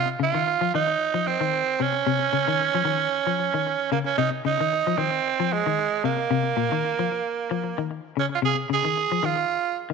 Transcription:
Already playing: clean electric guitar C3
0.20 clean electric guitar C#3, tenor saxophone F4
0.35 clean electric guitar D#3
0.61 clean electric guitar F3
0.75 clean electric guitar D#3, tenor saxophone D#4
1.14 clean electric guitar F3
1.27 tenor saxophone C4
1.41 clean electric guitar D#3
1.80 clean electric guitar C3, tenor saxophone C#4
2.07 clean electric guitar C3
2.33 clean electric guitar C#3
2.48 clean electric guitar D#3
2.75 clean electric guitar F3
2.85 clean electric guitar D#3
3.27 clean electric guitar F3
3.54 clean electric guitar D#3
3.92 clean electric guitar C#3, tenor saxophone A#3
4.06 tenor saxophone C#4
4.18 clean electric guitar C3, tenor saxophone D#4
4.45 clean electric guitar C#3, tenor saxophone D#4
4.60 clean electric guitar D#3
4.87 clean electric guitar F3
4.98 clean electric guitar D#3, tenor saxophone C4
5.40 clean electric guitar F3
5.53 tenor saxophone G#3
5.66 clean electric guitar D#3
6.04 clean electric guitar C3, tenor saxophone A#3
6.31 clean electric guitar C3
6.57 clean electric guitar A#2
6.72 clean electric guitar D#3
6.99 clean electric guitar F3
7.51 clean electric guitar F3
7.78 clean electric guitar D#3
8.17 clean electric guitar C#3, tenor saxophone C#4
8.35 tenor saxophone F4
8.42 clean electric guitar C3, tenor saxophone G#4
8.70 clean electric guitar C#3, tenor saxophone G#4
8.85 clean electric guitar D#3
9.12 clean electric guitar F3
9.23 clean electric guitar D#3, tenor saxophone F4
9.90 clean electric guitar D#3

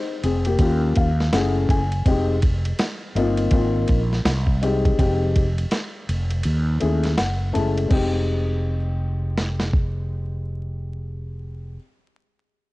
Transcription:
Already playing: upright piano D#4 C5
0.23 fretless electric bass F1, upright piano C4 G#4, ride
0.45 upright piano A#3 G4, ride
0.59 fretless electric bass D#2, upright piano A#3 C#4 F4 G4, kick, ride
0.95 fretless electric bass D#2, upright piano F5, kick, ride
1.20 snare
1.33 fretless electric bass F#1, upright piano A3 C#4 E4 G#4 F#5, snare, hi-hat pedal, ride
1.69 fretless electric bass F#1, upright piano G#5, kick, ride
1.92 ride
2.06 fretless electric bass F1, upright piano G#3 C4 D#4 G4, kick, ride
2.42 kick, ride
2.65 ride
2.79 snare, hi-hat pedal, ride
3.15 fretless electric bass G1, upright piano A#3 C4 D#4 F4, ride
3.37 ride
3.51 fretless electric bass G#1, upright piano A#3 C4 D#4 F4, kick, ride
3.88 fretless electric bass A#1, kick, ride
4.13 snare
4.25 fretless electric bass C2, snare, hi-hat pedal, ride
4.47 kick
4.62 upright piano G#3 C4 D#4 G4, ride
4.85 kick, ride
4.98 fretless electric bass F1, upright piano G#3 C4 D#4 G4, kick, ride
5.36 kick, ride
5.58 ride
5.71 snare, hi-hat pedal, ride
6.09 fretless electric bass F1, ride
6.30 ride
6.43 fretless electric bass D#2, ride
6.80 fretless electric bass D#2, upright piano A3 C#4 E4 G#4, ride
7.03 snare, ride
7.17 fretless electric bass F#1, upright piano F#5, snare, hi-hat pedal, ride
7.53 fretless electric bass F#1, upright piano G#3 A3 C#4 E4 A5, ride
7.78 ride
7.88 fretless electric bass F1, upright piano G#3 C4 D#4, kick, crash
7.93 upright piano G4
9.38 snare
9.60 snare
9.73 kick

